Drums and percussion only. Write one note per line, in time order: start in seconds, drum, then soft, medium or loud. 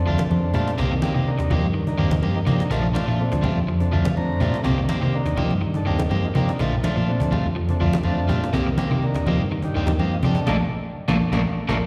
0.06 cajon slap soft
0.18 cajon bass medium
0.18 cajon slap medium
0.18 high conga medium
0.18 low conga medium
0.30 cajon slap soft
0.30 high conga medium
0.54 cajon bass medium
0.54 low conga medium
0.68 cajon slap medium
0.78 cajon bass medium
1.02 cajon bass medium
1.02 cajon slap medium
1.02 high conga medium
1.27 cajon slap soft
1.39 cajon bass medium
1.39 cajon slap medium
1.51 high conga medium
1.51 low conga medium
1.63 cajon slap soft
1.75 cajon slap soft
1.87 cajon bass medium
2.11 cajon bass medium
2.11 cajon slap medium
2.11 high conga medium
2.11 low conga medium
2.23 high conga medium
2.47 cajon bass medium
2.47 high conga medium
2.47 low conga medium
2.60 cajon slap medium
2.71 cajon bass medium
2.95 cajon bass medium
2.95 cajon slap medium
2.95 high conga medium
3.19 cajon slap soft
3.32 cajon bass medium
3.32 cajon slap medium
3.44 high conga medium
3.44 low conga medium
3.56 cajon slap soft
3.68 cajon slap soft
3.80 cajon bass medium
3.80 cajon slap soft
3.93 cajon slap soft
4.05 cajon bass medium
4.05 cajon slap medium
4.05 high conga medium
4.05 low conga medium
4.17 high conga medium
4.40 cajon bass medium
4.40 low conga medium
4.54 cajon slap medium
4.64 cajon bass medium
4.64 cajon slap soft
4.89 cajon bass medium
4.89 cajon slap medium
4.89 high conga medium
5.01 cajon slap soft
5.13 cajon slap soft
5.26 cajon bass medium
5.26 cajon slap medium
5.37 high conga medium
5.37 low conga medium
5.50 cajon slap soft
5.50 high conga medium
5.61 cajon slap soft
5.74 cajon bass medium
5.99 cajon bass medium
5.99 cajon slap medium
5.99 high conga medium
6.11 high conga medium
6.35 cajon bass medium
6.35 cajon slap soft
6.35 low conga medium
6.49 cajon slap medium
6.59 cajon bass medium
6.59 cajon slap soft
6.83 cajon bass medium
6.83 cajon slap medium
6.83 high conga medium
6.96 cajon slap soft
7.08 cajon slap soft
7.20 cajon bass medium
7.20 cajon slap medium
7.33 high conga medium
7.33 low conga medium
7.45 cajon slap soft
7.57 cajon slap soft
7.69 cajon bass medium
7.69 cajon slap soft
7.81 cajon slap soft
7.93 cajon bass medium
7.93 cajon slap medium
7.93 high conga loud
8.03 high conga medium
8.29 cajon bass medium
8.29 high conga medium
8.29 low conga medium
8.44 cajon slap medium
8.53 cajon bass medium
8.78 cajon bass medium
8.78 cajon slap medium
8.78 high conga medium
8.91 cajon slap soft
9.02 cajon slap soft
9.14 cajon bass medium
9.14 cajon slap medium
9.27 high conga medium
9.27 low conga medium
9.38 cajon slap soft
9.50 cajon slap soft
9.62 cajon bass medium
9.74 cajon slap soft
9.87 cajon bass medium
9.87 cajon slap medium
9.87 high conga medium
9.98 cajon slap soft
9.98 high conga medium
10.23 cajon bass medium
10.23 high conga medium
10.23 low conga medium
10.35 cajon slap medium
10.47 cajon bass medium
10.47 cajon slap medium
10.47 high conga medium
11.08 cajon bass medium
11.08 cajon slap medium
11.08 high conga loud
11.33 cajon bass medium
11.33 cajon slap medium
11.33 high conga medium
11.69 cajon bass medium
11.69 cajon slap medium
11.69 high conga medium